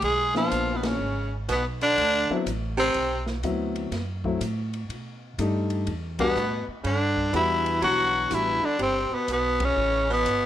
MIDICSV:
0, 0, Header, 1, 7, 480
1, 0, Start_track
1, 0, Tempo, 487409
1, 25, Time_signature, 4, 2, 24, 8
1, 10298, End_track
2, 0, Start_track
2, 0, Title_t, "Tenor saxophone"
2, 0, Program_c, 0, 66
2, 41, Note_on_c, 0, 68, 101
2, 328, Note_off_c, 0, 68, 0
2, 364, Note_on_c, 0, 65, 90
2, 757, Note_on_c, 0, 59, 58
2, 771, Note_off_c, 0, 65, 0
2, 850, Note_on_c, 0, 61, 77
2, 865, Note_off_c, 0, 59, 0
2, 1316, Note_off_c, 0, 61, 0
2, 1493, Note_on_c, 0, 59, 82
2, 1629, Note_off_c, 0, 59, 0
2, 1800, Note_on_c, 0, 62, 119
2, 2395, Note_off_c, 0, 62, 0
2, 2752, Note_on_c, 0, 60, 97
2, 3193, Note_off_c, 0, 60, 0
2, 6109, Note_on_c, 0, 59, 104
2, 6553, Note_off_c, 0, 59, 0
2, 6761, Note_on_c, 0, 62, 93
2, 7201, Note_off_c, 0, 62, 0
2, 7247, Note_on_c, 0, 64, 95
2, 7684, Note_off_c, 0, 64, 0
2, 7723, Note_on_c, 0, 66, 107
2, 8213, Note_on_c, 0, 64, 93
2, 8228, Note_off_c, 0, 66, 0
2, 8522, Note_on_c, 0, 62, 84
2, 8537, Note_off_c, 0, 64, 0
2, 8676, Note_off_c, 0, 62, 0
2, 8692, Note_on_c, 0, 60, 92
2, 9012, Note_on_c, 0, 59, 81
2, 9026, Note_off_c, 0, 60, 0
2, 9161, Note_off_c, 0, 59, 0
2, 9184, Note_on_c, 0, 59, 90
2, 9501, Note_on_c, 0, 61, 105
2, 9515, Note_off_c, 0, 59, 0
2, 9962, Note_off_c, 0, 61, 0
2, 9979, Note_on_c, 0, 59, 96
2, 10298, Note_off_c, 0, 59, 0
2, 10298, End_track
3, 0, Start_track
3, 0, Title_t, "Grand piano"
3, 0, Program_c, 1, 0
3, 345, Note_on_c, 1, 53, 62
3, 353, Note_on_c, 1, 58, 56
3, 353, Note_on_c, 1, 59, 56
3, 359, Note_on_c, 1, 62, 68
3, 954, Note_off_c, 1, 53, 0
3, 958, Note_off_c, 1, 58, 0
3, 958, Note_off_c, 1, 59, 0
3, 961, Note_off_c, 1, 62, 0
3, 2271, Note_on_c, 1, 54, 71
3, 2273, Note_on_c, 1, 59, 66
3, 2273, Note_on_c, 1, 60, 67
3, 2276, Note_on_c, 1, 64, 76
3, 2413, Note_off_c, 1, 54, 0
3, 2415, Note_off_c, 1, 59, 0
3, 2415, Note_off_c, 1, 60, 0
3, 2416, Note_off_c, 1, 64, 0
3, 3385, Note_on_c, 1, 54, 62
3, 3388, Note_on_c, 1, 59, 54
3, 3393, Note_on_c, 1, 60, 57
3, 3394, Note_on_c, 1, 64, 68
3, 3865, Note_off_c, 1, 54, 0
3, 3867, Note_off_c, 1, 59, 0
3, 3869, Note_off_c, 1, 60, 0
3, 3870, Note_off_c, 1, 64, 0
3, 4180, Note_on_c, 1, 54, 67
3, 4186, Note_on_c, 1, 57, 58
3, 4187, Note_on_c, 1, 60, 58
3, 4191, Note_on_c, 1, 64, 72
3, 4328, Note_off_c, 1, 54, 0
3, 4332, Note_off_c, 1, 57, 0
3, 4332, Note_off_c, 1, 60, 0
3, 4334, Note_off_c, 1, 64, 0
3, 5309, Note_on_c, 1, 55, 66
3, 5312, Note_on_c, 1, 57, 58
3, 5317, Note_on_c, 1, 63, 69
3, 5318, Note_on_c, 1, 62, 55
3, 5788, Note_off_c, 1, 55, 0
3, 5789, Note_off_c, 1, 57, 0
3, 5792, Note_off_c, 1, 62, 0
3, 5792, Note_off_c, 1, 63, 0
3, 6099, Note_on_c, 1, 55, 77
3, 6102, Note_on_c, 1, 59, 75
3, 6106, Note_on_c, 1, 66, 90
3, 6108, Note_on_c, 1, 62, 70
3, 6248, Note_off_c, 1, 55, 0
3, 6250, Note_off_c, 1, 59, 0
3, 6251, Note_off_c, 1, 66, 0
3, 6253, Note_off_c, 1, 62, 0
3, 7227, Note_on_c, 1, 55, 71
3, 7232, Note_on_c, 1, 59, 56
3, 7237, Note_on_c, 1, 66, 73
3, 7239, Note_on_c, 1, 62, 56
3, 7694, Note_off_c, 1, 59, 0
3, 7699, Note_off_c, 1, 66, 0
3, 7701, Note_off_c, 1, 62, 0
3, 7703, Note_on_c, 1, 52, 61
3, 7709, Note_on_c, 1, 59, 52
3, 7714, Note_on_c, 1, 66, 66
3, 7715, Note_on_c, 1, 62, 53
3, 7960, Note_off_c, 1, 55, 0
3, 8163, Note_off_c, 1, 59, 0
3, 8167, Note_off_c, 1, 62, 0
3, 8168, Note_off_c, 1, 66, 0
3, 8169, Note_off_c, 1, 52, 0
3, 8177, Note_on_c, 1, 55, 49
3, 8178, Note_on_c, 1, 59, 46
3, 8181, Note_on_c, 1, 62, 45
3, 8183, Note_on_c, 1, 66, 56
3, 8467, Note_off_c, 1, 55, 0
3, 8467, Note_off_c, 1, 59, 0
3, 8469, Note_off_c, 1, 62, 0
3, 8470, Note_off_c, 1, 66, 0
3, 10298, End_track
4, 0, Start_track
4, 0, Title_t, "Baritone saxophone"
4, 0, Program_c, 2, 67
4, 37, Note_on_c, 2, 56, 75
4, 326, Note_off_c, 2, 56, 0
4, 356, Note_on_c, 2, 53, 86
4, 728, Note_on_c, 2, 47, 45
4, 743, Note_off_c, 2, 53, 0
4, 820, Note_on_c, 2, 49, 68
4, 835, Note_off_c, 2, 47, 0
4, 1301, Note_off_c, 2, 49, 0
4, 1462, Note_on_c, 2, 47, 68
4, 1605, Note_off_c, 2, 47, 0
4, 1790, Note_on_c, 2, 50, 101
4, 2390, Note_off_c, 2, 50, 0
4, 2730, Note_on_c, 2, 48, 86
4, 3182, Note_off_c, 2, 48, 0
4, 6096, Note_on_c, 2, 47, 86
4, 6546, Note_off_c, 2, 47, 0
4, 6732, Note_on_c, 2, 50, 78
4, 7185, Note_off_c, 2, 50, 0
4, 7214, Note_on_c, 2, 52, 81
4, 7667, Note_off_c, 2, 52, 0
4, 7698, Note_on_c, 2, 54, 94
4, 8183, Note_on_c, 2, 52, 75
4, 8198, Note_off_c, 2, 54, 0
4, 8502, Note_on_c, 2, 50, 77
4, 8517, Note_off_c, 2, 52, 0
4, 8645, Note_off_c, 2, 50, 0
4, 8651, Note_on_c, 2, 48, 79
4, 8982, Note_on_c, 2, 47, 66
4, 8997, Note_off_c, 2, 48, 0
4, 9146, Note_off_c, 2, 47, 0
4, 9156, Note_on_c, 2, 47, 76
4, 9468, Note_on_c, 2, 49, 83
4, 9483, Note_off_c, 2, 47, 0
4, 9940, Note_off_c, 2, 49, 0
4, 9946, Note_on_c, 2, 47, 80
4, 10298, Note_off_c, 2, 47, 0
4, 10298, End_track
5, 0, Start_track
5, 0, Title_t, "Upright bass"
5, 0, Program_c, 3, 32
5, 22, Note_on_c, 3, 35, 79
5, 489, Note_off_c, 3, 35, 0
5, 503, Note_on_c, 3, 34, 76
5, 970, Note_off_c, 3, 34, 0
5, 978, Note_on_c, 3, 32, 74
5, 1447, Note_off_c, 3, 32, 0
5, 1463, Note_on_c, 3, 35, 82
5, 1930, Note_off_c, 3, 35, 0
5, 1943, Note_on_c, 3, 38, 75
5, 2238, Note_off_c, 3, 38, 0
5, 2423, Note_on_c, 3, 33, 76
5, 2890, Note_off_c, 3, 33, 0
5, 2906, Note_on_c, 3, 35, 75
5, 3371, Note_off_c, 3, 35, 0
5, 3376, Note_on_c, 3, 38, 86
5, 3846, Note_off_c, 3, 38, 0
5, 3855, Note_on_c, 3, 42, 76
5, 4326, Note_off_c, 3, 42, 0
5, 4338, Note_on_c, 3, 45, 83
5, 4808, Note_off_c, 3, 45, 0
5, 4818, Note_on_c, 3, 47, 75
5, 5287, Note_off_c, 3, 47, 0
5, 5302, Note_on_c, 3, 43, 81
5, 5769, Note_off_c, 3, 43, 0
5, 5780, Note_on_c, 3, 40, 75
5, 6249, Note_off_c, 3, 40, 0
5, 6261, Note_on_c, 3, 45, 76
5, 6558, Note_off_c, 3, 45, 0
5, 6739, Note_on_c, 3, 43, 73
5, 7209, Note_off_c, 3, 43, 0
5, 7223, Note_on_c, 3, 40, 88
5, 7691, Note_off_c, 3, 40, 0
5, 7699, Note_on_c, 3, 35, 73
5, 8168, Note_off_c, 3, 35, 0
5, 8184, Note_on_c, 3, 33, 78
5, 8480, Note_off_c, 3, 33, 0
5, 8658, Note_on_c, 3, 31, 76
5, 8957, Note_off_c, 3, 31, 0
5, 9139, Note_on_c, 3, 35, 84
5, 9608, Note_off_c, 3, 35, 0
5, 9621, Note_on_c, 3, 33, 77
5, 10089, Note_off_c, 3, 33, 0
5, 10100, Note_on_c, 3, 31, 81
5, 10298, Note_off_c, 3, 31, 0
5, 10298, End_track
6, 0, Start_track
6, 0, Title_t, "Muted upright bass strokes"
6, 2263, Note_on_c, 9, 29, 38
6, 2361, Note_off_c, 9, 29, 0
6, 6579, Note_on_c, 9, 29, 40
6, 6677, Note_off_c, 9, 29, 0
6, 8501, Note_on_c, 9, 29, 38
6, 8600, Note_off_c, 9, 29, 0
6, 8975, Note_on_c, 9, 29, 40
6, 9074, Note_off_c, 9, 29, 0
6, 10298, End_track
7, 0, Start_track
7, 0, Title_t, "Drums"
7, 20, Note_on_c, 9, 51, 58
7, 118, Note_off_c, 9, 51, 0
7, 341, Note_on_c, 9, 38, 46
7, 439, Note_off_c, 9, 38, 0
7, 506, Note_on_c, 9, 44, 53
7, 506, Note_on_c, 9, 51, 63
7, 605, Note_off_c, 9, 44, 0
7, 605, Note_off_c, 9, 51, 0
7, 821, Note_on_c, 9, 51, 64
7, 822, Note_on_c, 9, 38, 74
7, 919, Note_off_c, 9, 51, 0
7, 920, Note_off_c, 9, 38, 0
7, 1465, Note_on_c, 9, 44, 49
7, 1465, Note_on_c, 9, 51, 61
7, 1563, Note_off_c, 9, 44, 0
7, 1563, Note_off_c, 9, 51, 0
7, 1785, Note_on_c, 9, 51, 44
7, 1884, Note_off_c, 9, 51, 0
7, 1948, Note_on_c, 9, 51, 54
7, 2047, Note_off_c, 9, 51, 0
7, 2428, Note_on_c, 9, 44, 57
7, 2428, Note_on_c, 9, 51, 63
7, 2527, Note_off_c, 9, 44, 0
7, 2527, Note_off_c, 9, 51, 0
7, 2897, Note_on_c, 9, 51, 56
7, 2996, Note_off_c, 9, 51, 0
7, 3215, Note_on_c, 9, 38, 42
7, 3313, Note_off_c, 9, 38, 0
7, 3380, Note_on_c, 9, 44, 51
7, 3380, Note_on_c, 9, 51, 53
7, 3479, Note_off_c, 9, 44, 0
7, 3479, Note_off_c, 9, 51, 0
7, 3698, Note_on_c, 9, 51, 45
7, 3797, Note_off_c, 9, 51, 0
7, 3859, Note_on_c, 9, 51, 57
7, 3860, Note_on_c, 9, 38, 40
7, 3958, Note_off_c, 9, 51, 0
7, 3959, Note_off_c, 9, 38, 0
7, 4178, Note_on_c, 9, 36, 50
7, 4276, Note_off_c, 9, 36, 0
7, 4343, Note_on_c, 9, 44, 55
7, 4343, Note_on_c, 9, 51, 65
7, 4441, Note_off_c, 9, 44, 0
7, 4441, Note_off_c, 9, 51, 0
7, 4663, Note_on_c, 9, 51, 42
7, 4761, Note_off_c, 9, 51, 0
7, 4825, Note_on_c, 9, 51, 53
7, 4923, Note_off_c, 9, 51, 0
7, 5304, Note_on_c, 9, 44, 50
7, 5304, Note_on_c, 9, 51, 62
7, 5403, Note_off_c, 9, 44, 0
7, 5403, Note_off_c, 9, 51, 0
7, 5614, Note_on_c, 9, 51, 46
7, 5713, Note_off_c, 9, 51, 0
7, 5779, Note_on_c, 9, 51, 55
7, 5877, Note_off_c, 9, 51, 0
7, 6095, Note_on_c, 9, 51, 66
7, 6097, Note_on_c, 9, 36, 75
7, 6193, Note_off_c, 9, 51, 0
7, 6195, Note_off_c, 9, 36, 0
7, 6263, Note_on_c, 9, 44, 49
7, 6362, Note_off_c, 9, 44, 0
7, 6740, Note_on_c, 9, 51, 52
7, 6839, Note_off_c, 9, 51, 0
7, 7058, Note_on_c, 9, 36, 47
7, 7157, Note_off_c, 9, 36, 0
7, 7223, Note_on_c, 9, 44, 43
7, 7223, Note_on_c, 9, 51, 55
7, 7322, Note_off_c, 9, 44, 0
7, 7322, Note_off_c, 9, 51, 0
7, 7543, Note_on_c, 9, 51, 47
7, 7641, Note_off_c, 9, 51, 0
7, 7704, Note_on_c, 9, 51, 56
7, 7802, Note_off_c, 9, 51, 0
7, 8180, Note_on_c, 9, 44, 58
7, 8180, Note_on_c, 9, 51, 59
7, 8278, Note_off_c, 9, 44, 0
7, 8278, Note_off_c, 9, 51, 0
7, 8658, Note_on_c, 9, 51, 52
7, 8757, Note_off_c, 9, 51, 0
7, 9140, Note_on_c, 9, 44, 48
7, 9140, Note_on_c, 9, 51, 56
7, 9238, Note_off_c, 9, 44, 0
7, 9238, Note_off_c, 9, 51, 0
7, 9455, Note_on_c, 9, 51, 80
7, 9457, Note_on_c, 9, 36, 83
7, 9553, Note_off_c, 9, 51, 0
7, 9556, Note_off_c, 9, 36, 0
7, 10102, Note_on_c, 9, 44, 55
7, 10102, Note_on_c, 9, 51, 64
7, 10200, Note_off_c, 9, 44, 0
7, 10200, Note_off_c, 9, 51, 0
7, 10298, End_track
0, 0, End_of_file